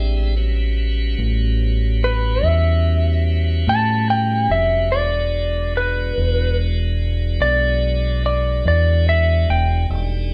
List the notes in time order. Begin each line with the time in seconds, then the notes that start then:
Already playing: A1 G#3 C4 D4 G4 E5
0.36 F#3 G3 B3 C#4
1.18 A1
2.04 B4
2.43 E2 E5
3.67 A2 A5
4.10 G5
4.49 F1 E5
4.92 E1 F#3 G#3 B3 D4 D5
5.77 B4
6.17 E1
7.40 B1 D5
8.26 D5
8.65 E2 D5
9.09 E5
9.49 E1 G5
9.89 E1 G3 A3 D4 D#4